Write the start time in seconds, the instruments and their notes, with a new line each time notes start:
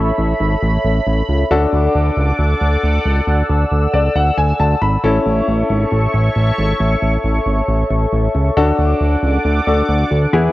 Already playing: analog synth bass A1, grand piano C#4 E4 A4, analog synth pad A4 C#5 E5 B5
0.18 analog synth bass A1
0.40 analog synth bass G#1
0.63 analog synth bass A1
0.85 analog synth bass A1
1.07 analog synth bass A1
1.29 analog synth bass C#2
1.51 analog synth bass D2, grand piano D4 F#4 A4, analog synth pad A4 D5 F#5 D6
1.73 analog synth bass D2
1.95 analog synth bass D2
2.17 analog synth bass C#2
2.39 analog synth bass D2
2.61 analog synth bass D2
2.83 analog synth bass D2
3.05 analog synth bass C#2
3.27 analog synth bass D2, analog synth pad E6
3.49 analog synth bass D2
3.71 analog synth bass D2
3.93 analog synth bass C#2, grand piano D5
4.16 analog synth bass D2, grand piano F#5
4.38 analog synth bass D2, grand piano G#5
4.60 analog synth bass D2, grand piano A5
4.82 analog synth bass G#1, grand piano B5
5.04 analog synth bass A1, grand piano C#4 E4 A4, analog synth pad A4 C#5 E5 C#6
5.26 analog synth bass A1
5.48 analog synth bass A1
5.70 analog synth bass G#1
5.92 analog synth bass A1
6.14 analog synth bass A1
6.36 analog synth bass A1
6.58 analog synth bass G#1
6.80 analog synth bass A1
7.02 analog synth bass A1
7.24 analog synth bass A1
7.46 analog synth bass G#1
7.68 analog synth bass A1
7.91 analog synth bass A1
8.13 analog synth bass A1
8.35 analog synth bass C#2
8.57 analog synth bass D2, grand piano D4 F#4 A4, analog synth pad D5 F#5 D6
8.79 analog synth bass D2
9.01 analog synth bass D2
9.23 analog synth bass C#2
9.45 analog synth bass D2
9.67 analog synth bass D2, grand piano D4 F#4 A4
9.89 analog synth bass D2
10.11 analog synth bass D2
10.33 analog synth bass E2, grand piano B3 E4 G#4, analog synth pad B4 E5 G#5 C#6